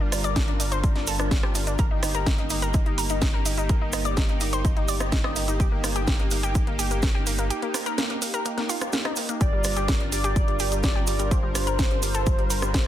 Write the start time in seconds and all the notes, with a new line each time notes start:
Already playing: G1 G3 D4 F4 A#4
0.00 D4
0.12 D4, cross-stick, open hi-hat, cabasa
0.24 D5, closed hi-hat, cabasa
0.36 D4, kick, snare, closed hi-hat, cabasa
0.48 D4, closed hi-hat
0.60 D4, open hi-hat, cabasa
0.72 C5, closed hi-hat, cabasa
0.84 D4, kick, closed hi-hat, cabasa
0.96 D4, snare, closed hi-hat
1.07 A4, open hi-hat, cabasa
1.19 D4, cross-stick, closed hi-hat, cabasa
1.31 D4, kick, snare, closed hi-hat, cabasa
1.43 G4, cross-stick
1.55 D4, open hi-hat, cabasa
1.67 D4, closed hi-hat, cabasa
1.78 G1 A#3 D#4 G4 A#4, kick, closed hi-hat, cabasa
1.91 D#4
2.03 D#4, cross-stick, open hi-hat, cabasa
2.14 A#4, closed hi-hat, cabasa
2.26 kick, snare, closed hi-hat, cabasa
2.38 D#4, closed hi-hat
2.50 D#4, open hi-hat, cabasa
2.62 A#4, closed hi-hat, cabasa
2.74 D#4, kick, closed hi-hat, cabasa
2.86 D#4, closed hi-hat
2.98 A#4, open hi-hat, cabasa
3.09 D#4, closed hi-hat, cabasa
3.22 D#4, kick, snare, closed hi-hat, cabasa
3.34 A#4
3.46 D#4, open hi-hat, cabasa
3.58 D#4, closed hi-hat, cabasa
3.69 A#4, kick, closed hi-hat, cabasa
3.81 D#4
3.92 D#4, cross-stick, open hi-hat, cabasa
4.05 D5, closed hi-hat, cabasa
4.17 D#4, kick, snare, closed hi-hat, cabasa
4.29 D#4, closed hi-hat
4.41 D#4, open hi-hat, cabasa
4.53 C5, closed hi-hat, cabasa
4.65 D#4, kick, closed hi-hat, cabasa
4.77 D#4, closed hi-hat
4.88 D5, open hi-hat, cabasa
5.00 D#4, cross-stick, closed hi-hat, cabasa
5.12 D#4, kick, snare, closed hi-hat, cabasa
5.24 D#5, cross-stick
5.36 D#4, open hi-hat, cabasa
5.48 D#4, closed hi-hat, cabasa
5.60 G4, kick, closed hi-hat, cabasa
5.72 A#3
5.84 A#3, cross-stick, open hi-hat, cabasa
5.96 G4, closed hi-hat, cabasa
6.07 A#3, kick, snare, closed hi-hat, cabasa
6.20 A#3, closed hi-hat
6.31 A#3, open hi-hat, cabasa
6.43 G4, closed hi-hat, cabasa
6.55 A#3, kick, closed hi-hat, cabasa
6.67 A#3, closed hi-hat
6.79 G4, open hi-hat, cabasa
6.91 A#3, closed hi-hat, cabasa
7.02 A#3, kick, snare, closed hi-hat, cabasa
7.15 G4
7.26 A#3, open hi-hat, cabasa
7.38 A#3, closed hi-hat, cabasa
7.50 G4, closed hi-hat, cabasa
7.62 A#3, closed hi-hat
7.74 A#3, cross-stick, open hi-hat, cabasa
7.86 A#4, closed hi-hat, cabasa
7.98 A#3, snare, closed hi-hat, cabasa
8.10 A#3, closed hi-hat
8.22 A#3, open hi-hat, cabasa
8.34 A#4, closed hi-hat, cabasa
8.45 A#3, closed hi-hat, cabasa
8.57 A#3, snare, closed hi-hat
8.69 F4, open hi-hat, cabasa
8.81 A#3, cross-stick, closed hi-hat, cabasa
8.92 A#3, snare, closed hi-hat, cabasa
9.05 D#4, cross-stick, closed hi-hat
9.16 A#3, open hi-hat, cabasa
9.29 A#3, closed hi-hat, cabasa
9.41 G1 G3 D4 F4 G4 A#4 D5, kick, closed hi-hat, cabasa
9.53 G3
9.64 G3, cross-stick, open hi-hat, cabasa
9.77 G4, closed hi-hat, cabasa
9.88 G3, kick, snare, closed hi-hat, cabasa
10.00 G3, closed hi-hat
10.12 G3 D5, open hi-hat, cabasa
10.24 G4, closed hi-hat, cabasa
10.36 G3, kick, closed hi-hat, cabasa
10.48 G3, closed hi-hat
10.59 G4, open hi-hat, cabasa
10.72 G3, closed hi-hat, cabasa
10.83 G3 D5, kick, snare, closed hi-hat, cabasa
10.96 G4
11.07 G3, open hi-hat, cabasa
11.19 G3, closed hi-hat, cabasa
11.31 G4 C5, kick, closed hi-hat, cabasa
11.43 G3
11.55 G3, cross-stick, open hi-hat, cabasa
11.67 A#4, closed hi-hat, cabasa
11.79 G3, kick, snare, closed hi-hat, cabasa
11.91 G3, closed hi-hat
12.02 G3, open hi-hat, cabasa
12.14 A4, closed hi-hat, cabasa
12.26 G3, kick, closed hi-hat, cabasa
12.38 G3, closed hi-hat
12.50 A#4, open hi-hat, cabasa
12.62 G3, cross-stick, closed hi-hat, cabasa
12.74 G3, kick, snare, closed hi-hat, cabasa